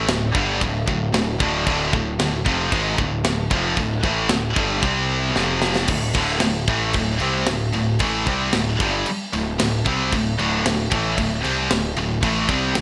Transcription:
0.07 D1 D2 A2, snare, crash
0.35 G1 G2 D3 G3, kick
0.61 D1 D2 A2, kick, crash
0.88 D1 D2 A2, kick
1.13 D1 D2 A2, snare, crash
1.40 D1 D2 A2 D3, kick
1.66 D1 D2 A2 D3, kick, crash
1.93 D1 D2 A2, kick
2.19 D1 D2 A2, snare, crash
2.45 F1 F2 C3 F3, kick
2.72 G#1 G#2 D#3 G#3, kick, crash
2.98 D1 D2 A2, kick
3.24 D1 D2 A2, snare, crash
3.50 F1 F2 C3 F3, kick
3.77 D1 D2 A2, kick, crash
4.03 A1 A2 E3 A3, kick
4.29 D1 D2 A2, snare, crash
4.56 G1 G2 D3 G3, kick
4.82 C2 C3 G3 C4, kick, crash
5.35 F1 F2 C3 F3, snare
5.62 snare
5.76 snare
5.87 D1 D2 A2, kick, crash
6.14 D1 D2 A2 D3, kick, crash
6.40 D1 D2 A2, snare, crash
6.67 A1 A2 E3 A3, kick, crash
6.93 D1 D2 A2, kick, crash
7.19 C2 C3 G3 C4, crash
7.46 D1 D2 A2, snare, crash
7.73 D1 D2 A2, crash
7.99 A1 A2 E3 A3, kick, crash
8.26 C2 C3 G3 C4, kick, crash
8.53 D1 D2 A2, snare, crash
8.80 G1 G2 D3 G3, kick, crash
9.06 crash
9.33 D1 D2 A2, crash
9.58 D1 D2 A2, snare, crash
9.85 C2 C3 G3 C4, kick, crash
10.12 D1 D2 A2, kick, crash
10.39 D1 D2 A2 D3, crash
10.65 D1 D2 A2, snare, crash
10.91 A1 A2 E3 A3, kick, crash
11.18 D1 D2 A2, kick, crash
11.43 C2 C3 G3 C4, crash
11.70 D1 D2 A2, snare, crash
11.97 D1 D2 A2, crash
12.22 A1 A2 E3 A3, kick, crash
12.48 C2 C3 G3 C4, kick, crash
12.75 D1 D2 A2, snare, crash

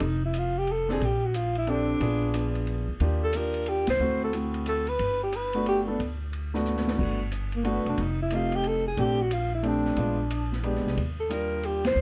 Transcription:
0.00 F1 D#4, kick, ride
0.25 E4
0.34 hi-hat pedal, ride
0.39 F4
0.59 G4
0.67 ride
0.72 A4
0.89 C4 D4 G4 G#4 A4, snare
1.01 A#1, kick, ride
1.05 G4
1.26 F#4
1.34 F4, hi-hat pedal, ride
1.55 E4, ride
1.67 C4 D4 G4 A4, ride
2.00 A#1 B3 D4 F4 G#4, kick, ride
2.34 B3 D4 F4 G#4, hi-hat pedal, ride
2.55 ride
2.67 ride
2.88 D2
3.00 D#2 A#3 D4 F4 G4, kick, ride
3.24 A4
3.33 A#3 D4 F4 G4 A#4, hi-hat pedal, ride
3.54 ride
3.66 G4, ride
3.87 C#2 C5, snare, ride
3.99 D2 A3 C4 E4 F#4
4.24 A4
4.33 A3 C4 E4 F#4, hi-hat pedal, ride
4.54 ride
4.66 A4, hi-hat pedal, ride
4.87 B4, ride
4.99 G1, kick, ride
5.23 G4
5.32 B4, hi-hat pedal, ride
5.53 A3 B3 D4 F#4, ride
5.66 G4, ride
5.87 A3 B3 D4 A4
5.99 D2, kick, ride
6.33 ride
6.54 A3 B3 D4 F#4, snare
6.65 snare, hi-hat pedal
6.77 snare
6.87 snare
6.98 G1 A3 B3 D4 F#4, kick, crash
7.31 hi-hat pedal, ride
7.52 A#3, ride
7.64 A3 B3 D4 F#4, ride
7.68 B3
7.85 E1, ride
7.89 D4
7.98 F1, kick, ride
8.02 D#4
8.22 E4
8.30 A3 C4 D#4 G4, hi-hat pedal, ride
8.35 F4
8.52 G4, ride
8.64 A4, ride
8.88 G#4
8.97 A#1 A3 C4 D4 G4, kick, ride
9.22 F#4
9.31 F4, hi-hat pedal, ride
9.55 E4
9.63 A3 C4 D4 G4, ride
9.68 D4
9.85 snare
9.96 A#1 G#3 B3 D4 F4, kick, ride
10.30 hi-hat pedal, ride
10.52 snare
10.63 G#3 B3 D4 G4, ride
10.75 snare
10.84 C2, snare
10.97 D#2, kick, ride
11.20 A4
11.29 G3 A#3 D4 F4 A#4, hi-hat pedal, ride
11.63 G4, ride
11.85 C5, snare, ride
11.96 D2

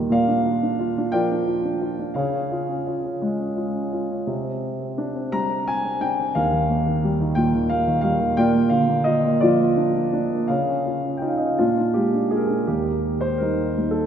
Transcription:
Already playing: D#2 A#2 D#3 G3 A#3 G4 A#4 D#5
0.10 A#2 A#4 D5 F5
0.28 D4
0.45 F4
0.63 D4
0.79 F4
0.98 D4
1.12 F3 A#4 D5 G5
1.31 D4
1.47 F4
1.65 D4
1.81 F4
1.99 D4
2.14 C#3 G#4 C#5 F5
2.33 C#4
2.52 F4
2.69 C#4
2.87 F4
3.04 C#4
3.22 G#3
3.40 C#4
3.57 F4
3.75 C#4
3.93 F4
4.11 C#4
4.27 C3
4.44 C4
4.80 C4
4.98 D4
5.15 C4
5.32 G3 A#5
5.50 C4
5.68 G#5
5.84 C4
6.00 D4 G5
6.18 C4
6.35 D#2 A#4 F5
6.52 D#3
6.69 A#3
6.86 D#3
7.04 G3
7.20 D#3
7.35 A#2 G5
7.54 D#3
7.70 A#3 F5
7.87 D#3
8.01 G3 F5
8.20 D#3
8.37 A#2 A#4 D5 G5
8.54 A#3
8.70 D3 F5
8.88 A#3
9.04 F4 D#5
9.24 A#3
9.41 F3 F4 A#4 D5
9.60 A#3
9.77 D4
9.95 A#3
10.13 D4
10.32 A#3
10.48 C#3 G#4 C#5 F5
10.69 C#4
10.86 F4
11.05 C#4
11.17 G5
11.22 D#4 F4
11.28 F5
11.37 D#5
11.42 C#4
11.46 F5
11.58 A#2 D4 F4
11.77 D4
11.94 G#3 G4
12.14 D4
12.31 F4 G#4
12.36 A#4
12.46 G#4
12.50 D4
12.67 D#2 A#3 G4
13.21 C5
13.38 G3 A#3 D#4 A#4
13.77 G3 A#3 D#4
13.91 A4

